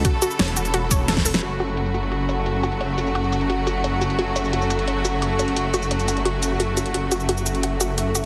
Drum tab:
HH |x-x-xxxxx-x-x-ox|x-x-x-xxx-x-x-xx|x-x-x-xxx-x-x-xx|x-x-x-xxx-x-x-xx|
SH |--xx--xx--x---x-|--xx-xx---x-x-x-|--xx-xx---x-x-x-|--xx-xx---x-x-x-|
SD |----o-------oo-o|----------------|----------------|----------------|
BD |o---------o--o--|----------------|----------------|----------------|

HH |x-x-xxxxx-x-x-xx|x-x-x-xxx-x-x-x-|
SH |--xx-xx---x-x-x-|--xx-xx---x-x-x-|
SD |----------------|----------------|
BD |----------------|----------------|